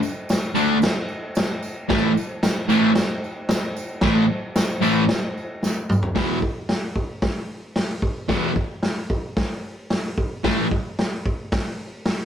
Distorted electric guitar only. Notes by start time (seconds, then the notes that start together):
0.55 D3 A3 D4
1.89 A2 E3 A3
2.69 A2 E3 A3
4.02 A2 E3 A3
4.81 A2 E3 A3
6.15 E2 B2 E3
8.29 E2 B2 E3
10.44 A2 E3 A3